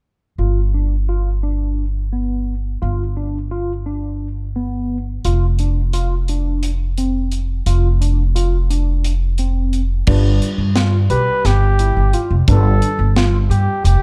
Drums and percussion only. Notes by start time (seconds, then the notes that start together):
5.25 closed hi-hat
5.59 closed hi-hat
5.93 closed hi-hat
6.28 closed hi-hat
6.63 closed hi-hat
6.98 closed hi-hat
7.32 closed hi-hat
7.66 closed hi-hat
8.02 closed hi-hat
8.36 closed hi-hat
8.71 closed hi-hat
9.04 closed hi-hat
9.38 closed hi-hat
9.73 closed hi-hat
10.07 kick, crash
10.42 closed hi-hat
10.76 snare, closed hi-hat
11.10 closed hi-hat
11.45 snare, closed hi-hat
11.79 closed hi-hat
12.13 closed hi-hat
12.48 kick, closed hi-hat
12.82 closed hi-hat
13.16 snare, closed hi-hat
13.51 closed hi-hat
13.85 closed hi-hat